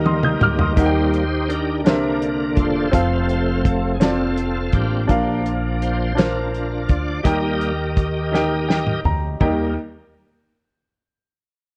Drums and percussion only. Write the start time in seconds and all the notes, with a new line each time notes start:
0.06 high tom
0.23 mid tom
0.41 mid tom
0.59 floor tom
0.77 kick, closed hi-hat
1.14 closed hi-hat
1.50 closed hi-hat
1.86 snare, closed hi-hat
2.22 closed hi-hat
2.57 kick, closed hi-hat
2.93 kick, closed hi-hat
3.29 closed hi-hat
3.65 kick, closed hi-hat
4.01 snare, closed hi-hat
4.38 closed hi-hat
4.73 kick, closed hi-hat
5.09 kick, closed hi-hat
5.46 closed hi-hat
5.82 closed hi-hat
6.18 snare, closed hi-hat
6.54 closed hi-hat
6.89 kick, closed hi-hat
7.25 kick, closed hi-hat
7.61 closed hi-hat
7.97 kick, closed hi-hat
8.34 snare
8.70 snare
8.87 mid tom
9.05 floor tom
9.41 kick, floor tom